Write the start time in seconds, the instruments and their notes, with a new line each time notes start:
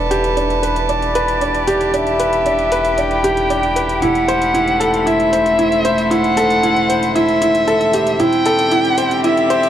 Already playing: analog synth bass E1, upright piano D4, string quartet D4 E4 A4 E5 A5, violin B4
0.11 upright piano G4, string quartet B5, closed hi-hat
0.24 closed hi-hat
0.37 upright piano D4, closed hi-hat
0.50 closed hi-hat
0.63 upright piano B4, closed hi-hat
0.76 string quartet G4, closed hi-hat
0.89 upright piano D4, violin D5, closed hi-hat
1.02 closed hi-hat
1.15 upright piano B4, closed hi-hat
1.28 closed hi-hat
1.41 upright piano D4, closed hi-hat
1.54 closed hi-hat
1.67 upright piano G4, closed hi-hat
1.81 closed hi-hat
1.94 upright piano D4, violin E5, closed hi-hat
2.07 closed hi-hat
2.20 upright piano B4, closed hi-hat
2.33 closed hi-hat
2.46 upright piano D4, closed hi-hat
2.59 closed hi-hat
2.72 upright piano B4, closed hi-hat
2.85 closed hi-hat
2.98 upright piano D4, violin G5, closed hi-hat
3.11 closed hi-hat
3.24 upright piano G4, closed hi-hat
3.37 closed hi-hat
3.50 upright piano D4, closed hi-hat
3.63 closed hi-hat
3.76 upright piano B4, closed hi-hat
3.89 closed hi-hat
4.02 analog synth bass E1, string quartet A3, upright piano E4, violin F#5, closed hi-hat
4.15 closed hi-hat
4.28 upright piano C5, closed hi-hat
4.38 string quartet C5, closed hi-hat
4.54 upright piano E4, closed hi-hat
4.68 closed hi-hat
4.80 upright piano A4, closed hi-hat
4.94 closed hi-hat
5.06 upright piano E4, violin E5, closed hi-hat
5.20 closed hi-hat
5.33 upright piano C5, closed hi-hat
5.46 closed hi-hat
5.59 upright piano E4, closed hi-hat
5.72 closed hi-hat
5.85 upright piano C5, closed hi-hat
5.98 closed hi-hat
6.11 upright piano E4, violin F#5, closed hi-hat
6.24 closed hi-hat
6.37 upright piano A4, closed hi-hat
6.50 closed hi-hat
6.63 upright piano E4, closed hi-hat
6.76 closed hi-hat
6.89 upright piano C5, closed hi-hat
7.03 closed hi-hat
7.15 upright piano E4, violin E5, closed hi-hat
7.29 closed hi-hat
7.42 upright piano E4, closed hi-hat
7.55 closed hi-hat
7.68 upright piano A4, closed hi-hat
7.81 closed hi-hat
7.93 upright piano G4, closed hi-hat
8.07 closed hi-hat
8.19 analog synth bass E1, string quartet C4, upright piano E4, violin G5, closed hi-hat
8.33 closed hi-hat
8.46 string quartet G4, upright piano A4, closed hi-hat
8.59 string quartet D5, closed hi-hat
8.71 upright piano E4, closed hi-hat
8.85 closed hi-hat
8.98 upright piano C5, closed hi-hat
9.05 string quartet E5
9.11 closed hi-hat
9.24 upright piano E4, violin E5, closed hi-hat
9.37 closed hi-hat
9.50 upright piano C5, closed hi-hat
9.63 closed hi-hat